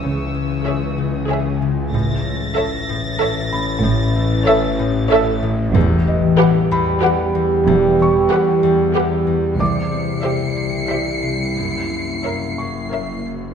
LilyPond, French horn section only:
\new Staff \with { instrumentName = "French horn section" } { \time 3/4 \key e \major \tempo 4 = 94 << { cis'2. | cis'2.~ | cis'2. | g'2.~ |
g'2. | e'2.~ | e'2~ e'8 r8 | } \\ { e2. | e2.~ | e2. | g2.~ |
g2. | g2. | ais2~ ais8 r8 | } >> }